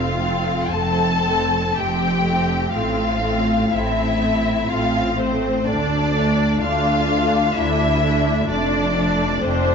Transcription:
Already playing: F1 F2 A3 C4 F4 F5
0.21 A3 C4
0.72 F1 F2 A3 C4 A4 A5
1.24 A3 C4
1.74 F1 F2 A3 C4 G4 G5
2.25 A3 C4
2.73 A1 A2 A3 C4 F4 F5
3.23 A3 C4
3.71 A1 A2 A3 C4 E4 E5
4.20 A3 C4
4.69 A1 A2 A3 C4 F4 F5
5.17 A3 C4 C5
5.66 D2 A3 D4 D5
6.14 A3 D4
6.61 D2 A3 D4 F4 F5
7.07 A3 D4
7.54 D2 A3 D4 E4 E5
8.01 A3 D4
8.48 F1 F2 A3 D4 D5
8.98 A3 D4
9.42 F1 F2 A3 C4 D4 C5

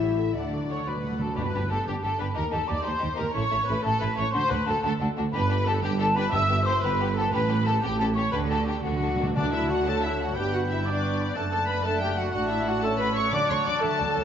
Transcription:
Already playing: A1 E3 E4 E5
0.01 G3 G4 C#5
0.17 A3 A4 E5
0.35 D2 D3 A3 D4 A4 D5 F#5
0.42 D3
0.50 D3 F#3 F#4 D5
0.58 D3
0.65 D3 C#6
0.70 D3 A3 A4 C#5 F#5
0.80 D3
0.87 D3 F#3 F#4 B4 D5 B5
0.96 D3
1.03 D3 A3 A4 F#5
1.11 D3
1.19 D3 F#3 F#4 A4 D5 A5
1.27 D3
1.37 G1 G2 D4 G4 B4 B5
1.54 G1 G2 D4 G4
1.70 G1 G2 D4 G4 A4 A5
1.86 G1 G2 D4 G4 G5
2.02 G1 G2 D4 G4 A4 A5
2.19 G1 G2 D4 G4 B4 B5
2.35 D#2 D#4 G4 A#4 A#5
2.51 D#2 D#4 G4 A4 A5
2.68 D#2 D#4 G4 D5 D6
2.83 D#2 D#4 G4 C5 C6
2.88 C5
3.00 D#2 D#4 G4
3.16 D#2 D#4 G4 A#4 A#5
3.20 D#2
3.34 A1 A2 E4 A4 C#5 C#6
3.51 A1 A2 E4 A4
3.67 A1 A2 E4 A4 B4 B5
3.83 A1 A2 E4 A4 A5
3.99 A1 A2 E4 A4 B4 B5
4.16 A1 A2 E4 A4 C#5 C#6
4.32 D2 D4 F#4 C5 C6
4.49 D2 D4 F#4 B4 B5
4.66 D2 D4 F#4 A4 A5
4.82 D2 D4 F#4 A4 A5
5.00 D2 D4 F#4
5.17 D2 D4 F#4
5.32 G1 G2 D4 G4 B4 B5
5.50 D4 G4
5.67 D4 G4 A4 A5
5.82 G1 G2 D4 G4 G5
6.00 D4 G4 A4 A5
6.16 D4 G4 B4 B5
6.32 G1 G2 B3 G4 E5 E6
6.50 B3 G4
6.65 B3 G4 C5 C6
6.82 G1 G2 B3 G4 B4 B5
7.01 B3 G4
7.16 B3 G4 A4 A5
7.32 A1 A2 C#4 G4 B4 B5
7.50 C#4 G4
7.65 C#4 G4 A4 A5
7.81 A1 A2 C#4 G4 G5
7.98 C#4 G4 A4 A5
8.15 C#4 G4 C#5 C#6
8.32 D2 D3 D4 G4 B4 B5
8.49 D4 G4 A4 A5
8.66 D4 G4 G5
8.82 D2 D3 D4 F#4 F#5
8.86 A4
8.92 D3
9.00 D3 D4 A4
9.08 D3
9.16 D3
9.21 D3 D4 A4
9.35 D2 D3 A3 D4 F#4 D5 F#5 A5
9.52 E4 E5
9.70 F#4 F#5
9.85 A3 F#4 A4 C#5 A5
10.04 E4 E5
10.21 F#4 F#5
10.34 G1 G2 B3 D4 G4 B4 G5 B5
10.53 F#4 F#5
10.71 E4 E5
10.85 B3 D4 B4 D5 D6
11.02 C#6
11.21 B5
11.35 F#1 F#2 A3 D4 A4 D5 F#5 A5
11.51 A4 A5
11.67 B4 B5
11.84 A3 D4 A4 E5 F#5 A5
12.01 G4 G5
12.16 F#4 F#5
12.32 A1 A2 A3 D4 F#4 D5 F#5 A5
12.49 E4 E5
12.67 F#4 F#5
12.82 A3 C#4 A4 C#5 E5 A5 C#6
12.99 B4 B5
13.16 C#5 C#6
13.31 D2 D3 F#3 D4 D5 F#5 A5 D6
13.50 D2 D3 C#5 C#6
13.66 D2 D3 D5 D6
13.81 D2 D3 F#3 D4 A4 E5 A5
13.99 D2 D3 D5
14.16 D2 D3 C#5

